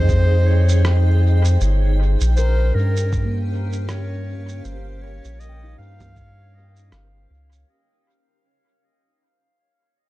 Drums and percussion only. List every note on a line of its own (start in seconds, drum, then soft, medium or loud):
0.09 kick loud
0.09 shaker soft
0.69 shaker medium
0.85 cross-stick medium
0.85 shaker soft
1.45 shaker medium
1.61 shaker soft
2.21 shaker medium
2.37 shaker soft
2.97 shaker medium
3.13 kick loud
3.13 shaker soft
3.73 shaker medium
3.89 cross-stick medium
3.89 shaker soft
4.49 shaker medium
4.65 shaker soft
5.25 shaker medium
5.40 shaker soft
6.00 low conga medium
6.00 shaker medium
6.16 kick loud
6.16 shaker soft
6.76 shaker medium
6.92 cross-stick medium
6.92 shaker soft
7.52 shaker medium